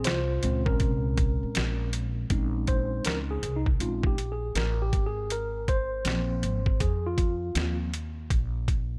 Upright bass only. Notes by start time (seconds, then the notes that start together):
0.07 C2
0.44 C#2
0.81 C2
1.43 muted upright bass stroke
1.56 A#1
2.30 A#1
3.06 C#2
3.43 C2
3.81 A#1
4.55 A1
4.93 G#1
6.05 A#1
6.43 G#1
6.81 F2
7.55 D#2
8.31 A#1